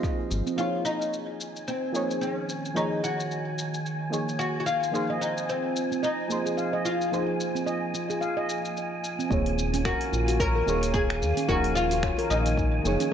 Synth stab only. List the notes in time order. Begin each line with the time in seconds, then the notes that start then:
Already playing: F3 A#3 D#4 G#4 C5
0.56 F3 A#3 D#4 G#4
0.60 C#5
1.92 F3 A#3 D#4 G#4 C#5
2.74 F3 A#3 D#4 G#4 C#5
4.10 F3 A#3 D#4 G#4
4.14 C#5
4.91 F3 A#3 D#4 G#4 C5
6.28 F3 A#3 D#4 G#4
6.32 C5
7.12 F3 A#3 D#4 G#4 C5
9.30 A#3 D#4 G#4 C#5
10.66 A#3 D#4 G#4 C#5
11.48 F3 A#3 D#4 G#4 C#5
12.83 F3 A#3 D#4 G#4 C#5